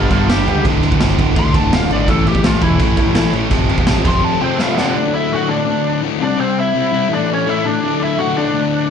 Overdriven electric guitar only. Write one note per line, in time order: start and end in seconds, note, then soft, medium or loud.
0.00 0.11 A4 loud
0.11 0.28 F4 medium
0.11 0.29 A4 medium
0.30 0.64 G4 medium
1.39 1.55 C6 loud
1.56 1.73 A5 loud
1.74 1.91 F5 medium
1.92 2.09 D5 medium
2.10 2.27 A4 loud
2.28 2.45 G4 loud
2.46 2.62 F4 loud
2.62 3.32 E4 loud
4.08 4.24 C6 loud
4.24 4.42 A5 loud
4.41 4.58 C4 medium
4.41 4.62 C5 medium
4.41 4.59 G5 loud
4.60 4.77 E4 medium
4.60 4.79 E5 medium
4.60 4.76 F5 medium
4.77 5.11 D4 medium
4.77 5.16 D5 medium
4.77 4.95 F#5 loud
5.14 5.31 E4 medium
5.14 5.35 E5 medium
5.33 5.49 F#4 medium
5.33 5.52 F#5 loud
5.49 5.99 D4 medium
5.49 6.00 D5 loud
6.23 6.39 D4 medium
6.23 6.40 D5 medium
6.40 6.57 C4 medium
6.40 6.59 C5 medium
6.59 7.08 E4 medium
6.59 7.14 E5 loud
7.13 7.29 D4 medium
7.13 7.31 D5 loud
7.33 7.48 C#4 medium
7.33 7.49 C#5 loud
7.49 7.65 E4 medium
7.49 7.67 E5 medium
7.65 7.99 D4 medium
7.65 8.03 D5 loud
8.03 8.18 E4 medium
8.03 8.20 E5 medium
8.19 8.35 F#4 medium
8.19 8.38 F#5 loud
8.37 8.87 D4 medium
8.37 8.87 D5 loud